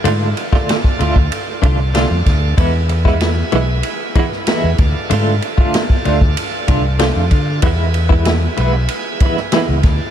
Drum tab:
RD |x-x-x-x-x-x-x-x-|x-x-x-x-x-x-x-x-|x-x-x-x-x-x-x-x-|x-x-x-x-x-x-x-x-|
SD |---oo-------o-o-|---oo------oo---|----o-------o---|----o------oo-o-|
BD |---o-o-o--o---o-|o--o------o---o-|---o-o-o--o---o-|o--o------o---o-|